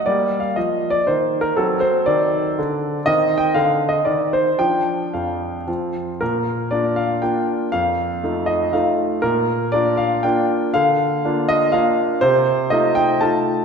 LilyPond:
<<
  \new Staff \with { instrumentName = "Grand piano" } { \time 3/4 \key d \phrygian \tempo 4 = 120 << { \tuplet 3/2 { d''4 f''8 ees''4 d''8 c''4 bes'8 } | a'8 c''8 d''2 | \key bes \major \tuplet 3/2 { ees''4 g''8 f''4 ees''8 } d''8 c''8 | g''4 f''4. r8 |
bes'4 d''8 f''8 g''4 | f''4. ees''8 f''4 | bes'4 d''8 f''8 g''4 | f''4. ees''8 f''4 |
c''4 ees''8 g''8 a''4 | } \\ { bes2. | c'2. | c'2. | d'2 c'4 |
r2. | r2. | r2. | r2. |
r2. | } >> }
  \new Staff \with { instrumentName = "Grand piano" } { \time 3/4 \key d \phrygian g4 f4 ees4 | fis4 ees4 d4 | \key bes \major ees4 d4 ees4 | f4 f,4 f4 |
bes,4 <bes d' f'>4 <bes d' f'>4 | f,4 <a ees' f'>4 <a ees' f'>4 | bes,4 <bes d' f'>4 <bes d' f'>4 | d4 <bes d' f'>4 <bes d' f'>4 |
c4 <a ees' f'>4 <a ees' f'>4 | }
>>